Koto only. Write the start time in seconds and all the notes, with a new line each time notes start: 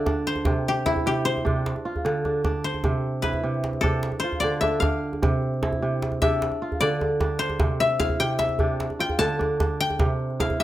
Already playing: D5 E5
0.27 C5
0.68 G4
0.86 E4
1.07 G4
1.25 C5
2.64 C5
3.22 B4
3.81 A4
4.20 C5
4.40 D5
4.61 E5
4.80 F5
6.22 E5
6.81 D5
7.39 C5
7.80 E5
8.00 F5
8.20 G5
8.39 E5
9.00 G5
9.19 A5
9.80 G5
10.40 F5
10.60 E5